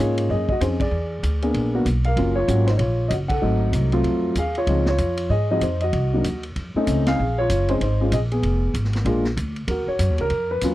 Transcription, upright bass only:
0.00 G#2
0.29 F#2
0.61 F2
0.91 E2
1.23 D2
1.54 A#1
1.85 B1
2.16 F#1
2.48 G#1
2.79 A#1
3.10 F#1
3.42 G#1
3.73 C2
4.04 F2
4.35 D#2
4.67 C#2
4.98 F2
5.29 G#2
5.61 F2
5.93 C2
6.24 D#2
6.56 F2
6.75 muted upright bass stroke
6.87 C#2
7.19 A#1
7.49 F#1
7.81 G#1
8.12 A#1
8.43 F1
8.74 G#1
9.05 A#1
9.37 D2
9.68 D#2
9.87 muted upright bass stroke
9.99 F#2
10.10 D#2
10.19 C#2
10.30 F2
10.62 D#2

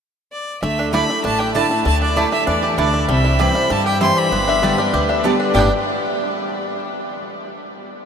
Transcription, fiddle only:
0.32 D5
0.63 E5
0.93 B5
1.25 A5
1.39 G5
1.54 A5
1.86 A5
2.02 D5
2.17 E5
2.33 E5
2.48 D5
2.79 D5
3.10 E5
3.40 B5
3.71 A5
3.86 G5
4.02 C6
4.18 B5
5.54 G5

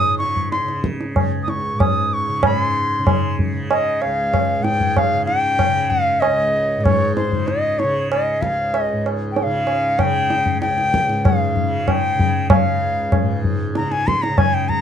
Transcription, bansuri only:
Already playing: D#6
0.18 C#6
0.52 C6
1.43 D#6
1.49 C#6
1.80 D#6
2.13 C#6
2.45 B5
2.59 C6
3.70 D#5
4.02 F5
4.63 G5
4.95 F5 G5
5.26 G5
5.90 F5
6.20 D#5
6.81 C#5 D#5
7.16 C5
7.48 D#5
7.79 C#5
8.11 D#5
8.42 F5
8.84 D#5
9.32 G5
9.38 G5
9.43 F5
9.99 G5
10.61 G5
11.25 F5
11.88 G5
12.51 F5
13.77 A#5
13.92 G#5
14.07 C6
14.22 A#5
14.38 G#5
14.54 G5
14.69 A#5

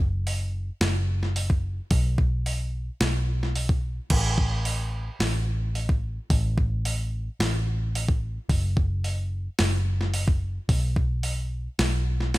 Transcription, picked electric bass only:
Already playing: F#1
0.81 F#1
1.91 B1
3.01 B1
4.10 A1
5.20 A1
6.30 A1
7.40 A1
8.49 F#1
9.60 F#1
10.69 B1
11.79 B1

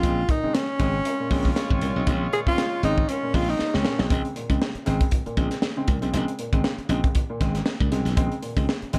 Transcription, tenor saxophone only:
Already playing: F4
0.30 D#4
0.55 C#4
2.33 G#4
2.48 F4
2.84 D#4
3.09 C#4
3.35 F4
3.49 D#4
3.75 C#4

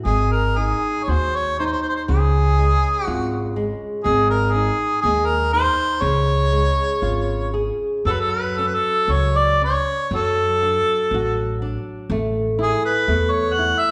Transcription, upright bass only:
0.05 G#1
1.08 D#2
2.09 C#2
3.07 G#1
4.05 G#1
5.04 D#2
6.02 C#2
7.02 G#1
8.05 F#2
9.08 C#2
10.11 F#2
11.11 A1
12.10 A1
13.08 E2

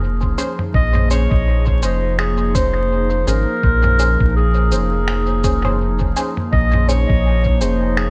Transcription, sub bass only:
Already playing: F1
0.74 A#1
1.31 A#1
1.82 F1
3.27 G#1
3.63 A#1
4.20 A#1
4.71 F1
6.53 A#1
7.09 A#1
7.61 F1

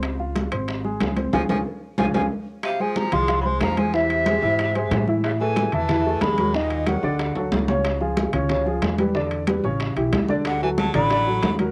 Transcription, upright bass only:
Already playing: C#2
0.52 G#1
1.01 C#2
1.33 C#2
1.49 C#2
1.98 C#2
2.14 C#2
3.12 C2
3.61 E2
4.42 G#2
4.91 A2
5.73 E2
6.21 D#2
7.03 D2
7.36 D2
7.52 C#2
8.33 C#2
8.82 E2
9.64 A1
9.96 B1
10.12 D2
10.94 A1
11.42 D#2

